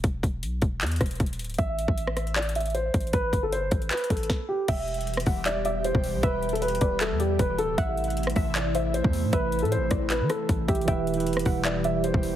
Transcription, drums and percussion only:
0.04 kick, closed hi-hat
0.23 kick, closed hi-hat
0.43 closed hi-hat
0.62 kick, closed hi-hat
0.81 clap, closed hi-hat
0.86 closed hi-hat
0.92 closed hi-hat
0.96 closed hi-hat
1.01 kick, cross-stick, closed hi-hat
1.06 closed hi-hat
1.11 closed hi-hat
1.15 closed hi-hat
1.20 kick, closed hi-hat
1.26 closed hi-hat
1.33 closed hi-hat
1.39 closed hi-hat
1.44 closed hi-hat
1.50 closed hi-hat
1.54 closed hi-hat
1.58 kick, closed hi-hat
1.79 closed hi-hat
1.88 kick
1.98 closed hi-hat
2.07 cross-stick
2.17 cross-stick, closed hi-hat
2.27 closed hi-hat
2.36 clap, closed hi-hat
2.42 closed hi-hat
2.49 closed hi-hat
2.55 closed hi-hat
2.60 closed hi-hat
2.66 closed hi-hat
2.70 closed hi-hat
2.75 closed hi-hat
2.94 kick, closed hi-hat
3.01 closed hi-hat
3.07 closed hi-hat
3.13 kick, closed hi-hat
3.33 kick, closed hi-hat
3.52 closed hi-hat
3.71 kick, closed hi-hat, open hi-hat
3.82 closed hi-hat
3.91 clap, closed hi-hat
3.97 closed hi-hat
4.04 closed hi-hat
4.10 kick, closed hi-hat
4.17 closed hi-hat
4.23 closed hi-hat
4.30 kick, snare
4.68 kick, closed hi-hat, crash
4.88 closed hi-hat
4.94 closed hi-hat
5.01 closed hi-hat
5.07 closed hi-hat
5.14 cross-stick, closed hi-hat
5.20 closed hi-hat
5.26 kick, open hi-hat
5.46 clap, closed hi-hat
5.65 closed hi-hat
5.84 closed hi-hat
5.95 kick
6.04 open hi-hat
6.23 kick, closed hi-hat
6.43 closed hi-hat
6.49 closed hi-hat
6.55 closed hi-hat
6.62 closed hi-hat
6.68 closed hi-hat
6.75 closed hi-hat
6.81 kick, closed hi-hat
7.01 clap, closed hi-hat
7.20 closed hi-hat
7.39 kick, closed hi-hat
7.59 closed hi-hat
7.78 kick, closed hi-hat
7.97 closed hi-hat
8.04 closed hi-hat
8.10 closed hi-hat
8.17 closed hi-hat
8.23 cross-stick, closed hi-hat
8.30 closed hi-hat
8.36 kick, open hi-hat
8.55 clap, closed hi-hat
8.75 closed hi-hat
8.94 closed hi-hat
9.04 kick
9.13 open hi-hat
9.33 kick, closed hi-hat
9.52 closed hi-hat
9.59 closed hi-hat
9.65 closed hi-hat
9.72 closed hi-hat
9.91 kick, cross-stick, closed hi-hat
10.10 clap, closed hi-hat
10.30 cross-stick, closed hi-hat
10.49 kick, closed hi-hat
10.68 kick, closed hi-hat
10.75 closed hi-hat
10.81 closed hi-hat
10.88 kick, closed hi-hat
11.07 closed hi-hat
11.14 closed hi-hat
11.20 closed hi-hat
11.27 closed hi-hat
11.33 cross-stick, closed hi-hat
11.39 closed hi-hat
11.45 kick, open hi-hat
11.65 clap, closed hi-hat
11.84 closed hi-hat
12.04 closed hi-hat
12.14 kick
12.23 open hi-hat

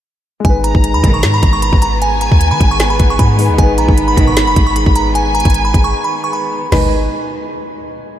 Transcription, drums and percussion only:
0.45 kick, closed hi-hat
0.64 closed hi-hat
0.75 kick
0.84 closed hi-hat
1.04 kick, closed hi-hat
1.23 snare, closed hi-hat
1.43 kick, closed hi-hat
1.62 closed hi-hat
1.73 kick
1.82 closed hi-hat
2.02 closed hi-hat
2.21 closed hi-hat
2.32 kick
2.41 closed hi-hat
2.60 kick, closed hi-hat
2.80 snare, closed hi-hat
2.99 kick, closed hi-hat
3.19 kick, closed hi-hat
3.39 open hi-hat
3.58 kick, closed hi-hat
3.78 closed hi-hat
3.88 kick
3.98 closed hi-hat
4.17 kick, closed hi-hat
4.37 snare, closed hi-hat
4.56 kick, closed hi-hat
4.76 closed hi-hat
4.86 kick
4.96 closed hi-hat
5.15 closed hi-hat
5.35 closed hi-hat
5.40 closed hi-hat
5.45 kick, closed hi-hat
5.50 closed hi-hat
5.54 closed hi-hat
5.74 kick, closed hi-hat
6.72 snare, floor tom, crash

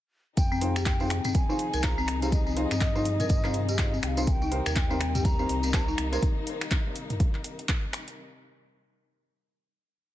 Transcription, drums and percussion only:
0.37 kick, closed hi-hat, tambourine
0.52 tambourine
0.61 open hi-hat
0.76 finger snap, closed hi-hat, tambourine
0.86 kick, clap, closed hi-hat, tambourine
1.00 tambourine
1.10 finger snap, open hi-hat
1.24 closed hi-hat, mid tom, tambourine
1.35 kick, closed hi-hat, tambourine
1.50 tambourine
1.59 open hi-hat
1.73 closed hi-hat, tambourine
1.83 kick, clap, closed hi-hat, tambourine
1.98 tambourine
2.08 finger snap, open hi-hat
2.22 closed hi-hat, tambourine
2.32 kick, closed hi-hat, tambourine
2.47 tambourine
2.57 open hi-hat
2.71 finger snap, closed hi-hat, tambourine
2.81 kick, clap, closed hi-hat, tambourine
2.95 tambourine
3.05 open hi-hat
3.20 closed hi-hat, mid tom, tambourine
3.29 kick, closed hi-hat, tambourine
3.44 clap, tambourine
3.54 open hi-hat
3.69 closed hi-hat, tambourine
3.79 kick, clap, closed hi-hat
3.94 tambourine
4.03 finger snap, open hi-hat
4.17 closed hi-hat, tambourine
4.27 kick, closed hi-hat, tambourine
4.42 tambourine
4.52 open hi-hat
4.66 finger snap, closed hi-hat, tambourine
4.76 kick, clap, closed hi-hat
4.91 tambourine
5.01 finger snap, open hi-hat
5.15 closed hi-hat, mid tom, tambourine
5.25 kick, closed hi-hat, tambourine
5.39 tambourine
5.49 open hi-hat
5.63 closed hi-hat, tambourine
5.74 kick, clap, closed hi-hat, tambourine
5.88 tambourine
5.98 finger snap, open hi-hat
6.13 closed hi-hat, tambourine
6.22 kick, closed hi-hat
6.47 open hi-hat
6.61 finger snap, closed hi-hat
6.71 kick, clap, closed hi-hat
6.96 open hi-hat
7.10 closed hi-hat, mid tom
7.20 kick, closed hi-hat
7.35 clap
7.44 open hi-hat
7.59 closed hi-hat
7.69 kick, clap, closed hi-hat
7.93 finger snap, open hi-hat
8.08 closed hi-hat

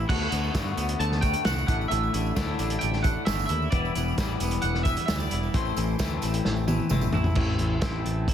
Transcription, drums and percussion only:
0.09 kick, crash, tambourine
0.32 closed hi-hat, tambourine
0.43 tambourine
0.55 kick, snare, closed hi-hat, tambourine
0.67 tambourine
0.77 closed hi-hat, tambourine
0.89 closed hi-hat
1.00 closed hi-hat, tambourine
1.12 snare
1.22 kick, closed hi-hat, tambourine
1.33 closed hi-hat
1.45 snare, closed hi-hat, tambourine
1.58 tambourine
1.68 kick, closed hi-hat
1.81 tambourine
1.91 closed hi-hat, tambourine
2.03 tambourine
2.14 closed hi-hat, tambourine
2.26 tambourine
2.36 kick, snare, closed hi-hat, tambourine
2.48 tambourine
2.59 closed hi-hat, tambourine
2.70 closed hi-hat
2.81 closed hi-hat, tambourine
2.93 snare
3.04 kick, closed hi-hat, tambourine
3.26 snare, closed hi-hat, tambourine
3.39 tambourine
3.49 closed hi-hat
3.62 tambourine
3.72 kick, closed hi-hat, tambourine
3.85 tambourine
3.95 closed hi-hat, tambourine
4.08 tambourine
4.18 kick, snare, closed hi-hat, tambourine
4.29 tambourine
4.40 closed hi-hat, tambourine
4.51 closed hi-hat
4.62 closed hi-hat, tambourine
4.75 snare
4.85 kick, closed hi-hat, tambourine
4.97 closed hi-hat
5.08 snare, closed hi-hat, tambourine
5.20 tambourine
5.31 closed hi-hat
5.43 tambourine
5.54 kick, closed hi-hat, tambourine
5.65 tambourine
5.77 closed hi-hat, tambourine
5.87 tambourine
5.99 kick, snare, closed hi-hat, tambourine
6.11 tambourine
6.22 closed hi-hat, tambourine
6.34 closed hi-hat
6.45 snare
6.56 tambourine
6.68 high tom, tambourine
6.80 tambourine
6.89 mid tom, tambourine
7.01 mid tom, tambourine
7.12 floor tom, tambourine
7.24 floor tom, tambourine
7.35 kick, crash
7.59 closed hi-hat
7.82 kick, snare, closed hi-hat
8.06 closed hi-hat
8.28 kick, closed hi-hat

